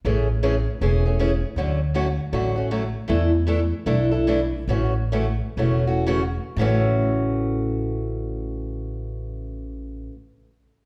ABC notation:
X:1
M:4/4
L:1/16
Q:"Swing" 1/4=142
K:A
V:1 name="Steel-string acoustic guitar"
[C,E,A,CG]2 z2 [C,E,A,CG] z3 [C,E,A,CG]2 [A,CG]2 [C,E,A,CG] z3 | [D,F,A,CF]2 z2 [D,F,A,CF] z3 [D,F,A,CF]2 [A,CF]2 [D,F,A,CF] z3 | [E,A,DEA]2 z2 [E,A,DEA] z3 [E,A,DEA]2 [DEA]2 [E,A,DEA] z3 | [C,E,A,CF]2 z2 [C,E,A,CF] z3 [C,E,A,CF]2 [A,CF]2 [C,E,A,CF] z3 |
[A,,C,E,A,CF]16- | [A,,C,E,A,CF]16 |]
V:2 name="Upright bass" clef=bass
A,,,8 E,,,8 | D,,8 A,,,8 | E,,8 B,,,8 | A,,,8 E,,,8 |
A,,,16- | A,,,16 |]